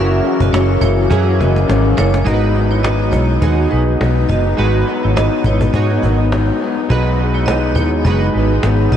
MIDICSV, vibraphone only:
0, 0, Header, 1, 2, 480
1, 0, Start_track
1, 0, Key_signature, 5, "minor"
1, 0, Tempo, 578035
1, 1887, Time_signature, 4, 2, 24, 8
1, 7448, End_track
2, 0, Start_track
2, 0, Title_t, "Vibraphone"
2, 0, Program_c, 0, 11
2, 0, Note_on_c, 0, 70, 76
2, 0, Note_on_c, 0, 76, 87
2, 200, Note_off_c, 0, 76, 0
2, 202, Note_off_c, 0, 70, 0
2, 337, Note_on_c, 0, 75, 66
2, 346, Note_on_c, 0, 66, 60
2, 440, Note_on_c, 0, 73, 80
2, 441, Note_off_c, 0, 75, 0
2, 446, Note_off_c, 0, 66, 0
2, 447, Note_on_c, 0, 64, 58
2, 667, Note_off_c, 0, 73, 0
2, 673, Note_off_c, 0, 64, 0
2, 677, Note_on_c, 0, 73, 81
2, 683, Note_on_c, 0, 64, 66
2, 808, Note_off_c, 0, 73, 0
2, 811, Note_off_c, 0, 64, 0
2, 1153, Note_on_c, 0, 75, 61
2, 1163, Note_on_c, 0, 66, 51
2, 1388, Note_off_c, 0, 75, 0
2, 1393, Note_off_c, 0, 66, 0
2, 1637, Note_on_c, 0, 73, 80
2, 1642, Note_on_c, 0, 64, 57
2, 1768, Note_off_c, 0, 73, 0
2, 1770, Note_off_c, 0, 64, 0
2, 1876, Note_on_c, 0, 75, 88
2, 1881, Note_on_c, 0, 66, 60
2, 2007, Note_off_c, 0, 75, 0
2, 2010, Note_off_c, 0, 66, 0
2, 2248, Note_on_c, 0, 73, 72
2, 2255, Note_on_c, 0, 64, 59
2, 2352, Note_on_c, 0, 75, 77
2, 2356, Note_off_c, 0, 73, 0
2, 2359, Note_on_c, 0, 66, 66
2, 2360, Note_off_c, 0, 64, 0
2, 2584, Note_on_c, 0, 73, 72
2, 2587, Note_off_c, 0, 75, 0
2, 2591, Note_off_c, 0, 66, 0
2, 2596, Note_on_c, 0, 64, 52
2, 2721, Note_off_c, 0, 73, 0
2, 2727, Note_off_c, 0, 64, 0
2, 2840, Note_on_c, 0, 75, 73
2, 2848, Note_on_c, 0, 66, 58
2, 3072, Note_off_c, 0, 75, 0
2, 3076, Note_off_c, 0, 66, 0
2, 3079, Note_on_c, 0, 71, 63
2, 3088, Note_on_c, 0, 63, 51
2, 3209, Note_off_c, 0, 71, 0
2, 3213, Note_off_c, 0, 63, 0
2, 3560, Note_on_c, 0, 75, 70
2, 3564, Note_on_c, 0, 66, 56
2, 3689, Note_off_c, 0, 75, 0
2, 3691, Note_off_c, 0, 66, 0
2, 3807, Note_on_c, 0, 75, 72
2, 3810, Note_on_c, 0, 66, 67
2, 3933, Note_off_c, 0, 75, 0
2, 3935, Note_off_c, 0, 66, 0
2, 4177, Note_on_c, 0, 73, 56
2, 4185, Note_on_c, 0, 64, 51
2, 4281, Note_off_c, 0, 73, 0
2, 4286, Note_off_c, 0, 64, 0
2, 4287, Note_on_c, 0, 75, 86
2, 4291, Note_on_c, 0, 66, 61
2, 4516, Note_off_c, 0, 75, 0
2, 4518, Note_off_c, 0, 66, 0
2, 4532, Note_on_c, 0, 73, 67
2, 4537, Note_on_c, 0, 64, 59
2, 4656, Note_off_c, 0, 73, 0
2, 4659, Note_off_c, 0, 64, 0
2, 4758, Note_on_c, 0, 75, 66
2, 4770, Note_on_c, 0, 66, 54
2, 4991, Note_off_c, 0, 75, 0
2, 4998, Note_off_c, 0, 66, 0
2, 5000, Note_on_c, 0, 78, 58
2, 5007, Note_on_c, 0, 70, 49
2, 5130, Note_off_c, 0, 78, 0
2, 5134, Note_off_c, 0, 70, 0
2, 5731, Note_on_c, 0, 75, 87
2, 5737, Note_on_c, 0, 66, 70
2, 5856, Note_off_c, 0, 75, 0
2, 5859, Note_off_c, 0, 66, 0
2, 6096, Note_on_c, 0, 73, 74
2, 6101, Note_on_c, 0, 64, 56
2, 6194, Note_on_c, 0, 75, 90
2, 6200, Note_on_c, 0, 66, 66
2, 6202, Note_off_c, 0, 73, 0
2, 6205, Note_off_c, 0, 64, 0
2, 6430, Note_off_c, 0, 75, 0
2, 6433, Note_off_c, 0, 66, 0
2, 6435, Note_on_c, 0, 73, 72
2, 6441, Note_on_c, 0, 64, 60
2, 6568, Note_off_c, 0, 73, 0
2, 6571, Note_off_c, 0, 64, 0
2, 6681, Note_on_c, 0, 75, 70
2, 6690, Note_on_c, 0, 66, 55
2, 6914, Note_off_c, 0, 75, 0
2, 6919, Note_off_c, 0, 66, 0
2, 6926, Note_on_c, 0, 71, 61
2, 6931, Note_on_c, 0, 63, 50
2, 7054, Note_off_c, 0, 71, 0
2, 7057, Note_off_c, 0, 63, 0
2, 7413, Note_on_c, 0, 75, 76
2, 7420, Note_on_c, 0, 66, 65
2, 7448, Note_off_c, 0, 66, 0
2, 7448, Note_off_c, 0, 75, 0
2, 7448, End_track
0, 0, End_of_file